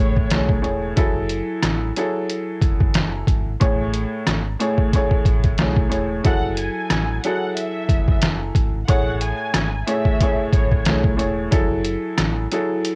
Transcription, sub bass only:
Already playing: A1
0.31 B1
0.64 E1
0.97 F#1
1.63 A1
2.62 F#1
2.95 F#1
3.27 G#1
3.61 A1
4.27 G#1
5.25 A1
5.59 B1
5.92 E1
6.25 F#1
6.91 A1
7.89 F#1
8.23 F#1
8.55 G#1
8.89 A1
9.55 G#1
10.53 A1
10.86 B1
11.20 E1
11.52 F#1
12.18 A1

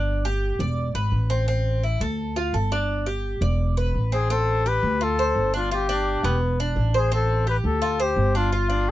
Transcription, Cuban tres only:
Already playing: D4
0.25 G4
0.60 D5
0.95 B4
1.30 C4
1.48 C4
1.83 E4
2.01 A4
2.36 F4
2.54 A4
2.72 D4
3.06 G4
3.42 D5
3.77 B4
4.12 C4
4.30 C4
4.66 G4
5.01 F4
5.19 C5
5.54 D4
5.71 F4
5.89 D4
6.24 B3
6.60 D4
6.94 C5
7.12 C4
7.47 G4
7.82 F4
8.00 C5
8.35 D4
8.52 F4
8.70 D4

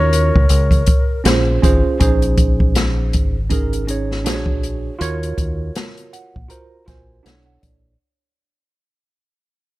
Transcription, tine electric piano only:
Already playing: C#4 F4 F#4 A#4
1.24 C#4 F4 G#4 C5
1.62 C#4 F4 G#4 C5
1.99 C#4 D#4 G#4 C5
3.50 C#4 D#4 G#4 A#4
3.87 C#4 D#4 G#4 C#5
4.25 D4 F#4 G#4 C5
4.34 C#5
4.99 F4 F#4 A#4 C#5
6.13 F#5
6.48 F4 F#4 A#4 C5 A#5
6.86 F4 F#4 A#4 C5 G#5
7.23 D4 E4 A4 C#5 F#5
7.46 F#5
7.62 D5

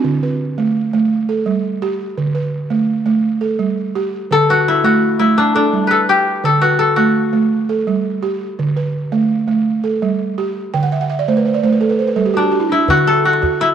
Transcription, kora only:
Already playing: D4
4.32 A4
4.50 F#4
4.68 E4
4.84 F#4
5.19 E4
5.38 D4
5.56 D4
5.87 A4 B4
6.09 G4
6.45 A4
6.61 F#4
6.79 A4
6.96 F#4
12.37 D4
12.72 E4
12.90 F#4
13.07 A4
13.25 F#4
13.61 E4

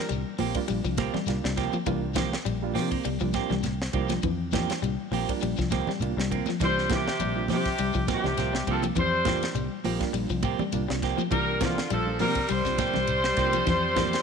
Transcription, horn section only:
6.65 C5
6.95 G4
7.54 G4
8.13 G4
8.71 A4
8.99 C5
11.32 A#4
11.63 F4
11.92 A4
12.20 A#4
12.49 C5

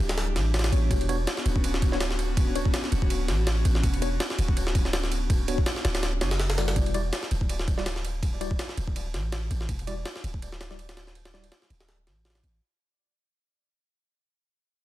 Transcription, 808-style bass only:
0.00 D1
0.36 A1
0.72 A1
0.91 E1
1.45 D1
2.92 D1
3.29 A1
3.65 A1
3.83 E1
4.38 D1
5.85 D1
6.21 F#1
6.76 E1
7.31 D1
8.77 D1
9.14 A1
9.51 A1
9.69 E1
10.24 D1
11.70 D1
12.07 A1
12.43 A1

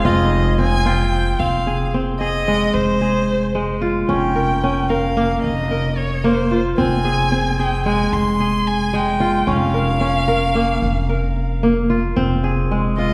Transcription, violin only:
0.05 D#5
0.60 G#5
0.87 G5
1.40 F5
2.19 D#5
2.74 C5
4.09 G5
4.89 F5
5.43 D#5
5.97 C#5
6.25 C5
6.77 G#5
7.59 G5
7.86 G#5
8.13 C6
8.67 G#5
8.96 G5
9.50 F5
12.97 D#5

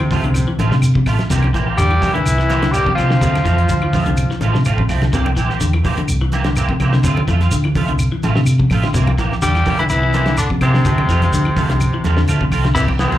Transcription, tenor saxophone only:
Already playing: C4
1.77 G4
2.13 E4
2.72 G4
2.95 F4
9.42 G4
9.79 E4
9.90 E4
10.38 D4
10.62 C4
12.75 E4
13.00 C4

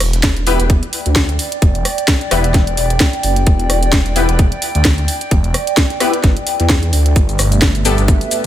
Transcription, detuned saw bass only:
0.00 E1
0.37 E1
0.60 E1
1.06 D2
1.62 E1
2.31 E1
2.67 E1
2.77 E1
3.24 F#1
3.47 E1
3.70 E1
4.06 E1
4.29 E1
4.75 D2
5.31 E1
6.24 G1
6.60 E2
6.93 D2
7.16 G1
7.39 G1
7.75 G1
7.98 G1

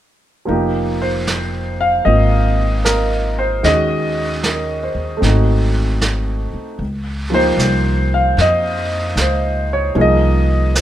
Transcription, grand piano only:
0.45 F3 A#3 D#4
0.51 G4
1.02 C5
1.81 F5
2.05 A#3 C4 F4 D#5
2.85 A#4
3.39 C5
3.63 D#3 G#3 C#4 D#5
3.68 F#4
4.44 A#4
4.83 C5
5.17 A3 C4
5.25 D#4 F#4
7.30 F3 A#3 D#4
7.34 G4 C5
8.14 F5
8.41 D#5
9.21 C5
9.73 C#5
9.95 F3 A#3 D#4 G#4
10.01 D#5
10.74 C5

